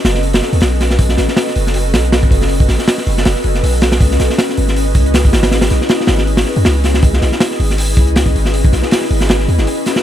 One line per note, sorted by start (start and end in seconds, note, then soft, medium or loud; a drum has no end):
0.00 0.78 C#4 loud
0.00 0.78 F#4 loud
0.00 0.78 A4 loud
0.00 0.78 B4 loud
0.00 0.78 D#5 loud
0.05 0.41 F#1 medium
0.05 snare loud
0.05 open hi-hat medium
0.15 snare medium
0.23 open hi-hat medium
0.33 snare loud
0.33 open hi-hat medium
0.42 snare soft
0.53 0.61 D#2 medium
0.53 open hi-hat medium
0.61 0.98 B1 loud
0.61 snare loud
0.61 open hi-hat medium
0.81 snare medium
0.81 open hi-hat medium
0.91 snare medium
0.99 1.16 B1 loud
0.99 2.29 C#4 loud
0.99 2.29 F#4 loud
0.99 2.29 A4 loud
0.99 2.29 B4 loud
0.99 2.29 D#5 loud
0.99 kick loud
0.99 open hi-hat loud
1.09 snare medium
1.18 1.27 A1 medium
1.18 snare medium
1.18 open hi-hat medium
1.28 snare soft
1.37 snare loud
1.37 open hi-hat medium
1.47 snare soft
1.56 1.95 F#1 medium
1.56 open hi-hat medium
1.67 snare soft
1.74 open hi-hat medium
1.94 2.30 B1 loud
1.94 snare medium
1.94 open hi-hat medium
2.05 closed hi-hat soft
2.12 snare loud
2.12 open hi-hat medium
2.23 kick loud
2.31 2.67 F#1 medium
2.31 kick loud
2.31 open hi-hat medium
2.41 snare soft
2.49 3.80 C#4 loud
2.49 3.80 F#4 loud
2.49 3.80 A4 loud
2.49 3.80 B4 loud
2.49 3.80 D#5 loud
2.49 open hi-hat medium
2.60 kick medium
2.68 2.78 A1 medium
2.68 snare soft
2.68 open hi-hat medium
2.79 snare soft
2.88 snare loud
2.88 open hi-hat medium
2.98 snare medium
3.07 3.25 F#1 medium
3.07 open hi-hat medium
3.18 snare soft
3.25 3.35 F#1 loud
3.25 snare loud
3.25 open hi-hat medium
3.36 snare soft
3.44 3.62 F#1 medium
3.44 open hi-hat medium
3.55 snare soft
3.63 4.00 B1 medium
3.63 open hi-hat medium
3.82 snare loud
3.82 open hi-hat medium
3.92 snare loud
3.92 open hi-hat medium
4.00 4.18 C#2 loud
4.00 5.31 C#4 loud
4.00 5.31 E4 loud
4.00 5.31 G#4 loud
4.00 5.31 B4 loud
4.00 5.31 D#5 loud
4.00 kick loud
4.00 open hi-hat medium
4.11 snare soft
4.20 4.29 B1 medium
4.20 snare medium
4.20 open hi-hat medium
4.30 snare soft
4.38 snare loud
4.38 open hi-hat medium
4.49 snare soft
4.57 4.97 G#1 medium
4.57 open hi-hat medium
4.68 snare soft
4.76 open hi-hat medium
4.95 5.32 C#2 loud
4.95 kick loud
4.95 open hi-hat medium
5.06 closed hi-hat soft
5.14 snare loud
5.14 open hi-hat medium
5.25 kick medium
5.33 5.70 G#1 medium
5.33 snare loud
5.33 open hi-hat medium
5.43 snare loud
5.43 open hi-hat medium
5.51 6.82 C#4 loud
5.51 6.82 E4 loud
5.51 6.82 G#4 loud
5.51 6.82 B4 loud
5.51 6.82 D#5 loud
5.51 snare loud
5.51 open hi-hat medium
5.61 snare loud
5.61 open hi-hat medium
5.70 5.80 B1 medium
5.70 snare soft
5.70 open hi-hat medium
5.81 snare soft
5.89 snare loud
5.89 open hi-hat medium
6.01 snare medium
6.07 6.45 G#1 medium
6.07 snare loud
6.07 open hi-hat medium
6.18 snare medium
6.27 open hi-hat medium
6.37 snare loud
6.37 open hi-hat medium
6.45 snare soft
6.56 6.64 F#2 medium
6.56 open hi-hat medium
6.65 7.02 C#2 loud
6.65 snare loud
6.65 open hi-hat medium
6.84 snare medium
6.84 open hi-hat medium
6.94 snare medium
7.02 7.20 C#2 loud
7.02 8.33 C#4 loud
7.02 8.33 E4 loud
7.02 8.33 G#4 loud
7.02 8.33 B4 loud
7.02 8.33 D#5 loud
7.02 kick loud
7.02 open hi-hat medium
7.13 snare medium
7.22 7.31 B1 medium
7.22 snare medium
7.22 open hi-hat medium
7.32 snare soft
7.40 snare loud
7.40 open hi-hat medium
7.51 snare soft
7.60 7.98 G#1 medium
7.60 open hi-hat medium
7.70 snare soft
7.78 open hi-hat medium
7.97 8.33 C#2 loud
7.97 kick loud
7.97 open hi-hat medium
8.07 closed hi-hat soft
8.16 snare loud
8.16 open hi-hat medium
8.26 kick medium
8.35 8.72 G#1 medium
8.35 open hi-hat medium
8.45 snare soft
8.54 open hi-hat medium
8.64 kick loud
8.72 8.82 B1 medium
8.72 snare soft
8.72 open hi-hat medium
8.83 snare soft
8.91 snare loud
8.91 open hi-hat medium
9.01 snare soft
9.10 9.47 G#1 medium
9.10 open hi-hat medium
9.21 snare soft
9.29 snare loud
9.29 open hi-hat medium
9.39 snare soft
9.48 9.60 E2 medium
9.48 open hi-hat medium
9.58 9.66 G#1 loud
9.58 snare soft
9.67 open hi-hat medium
9.86 snare soft
9.86 open hi-hat medium
9.96 snare medium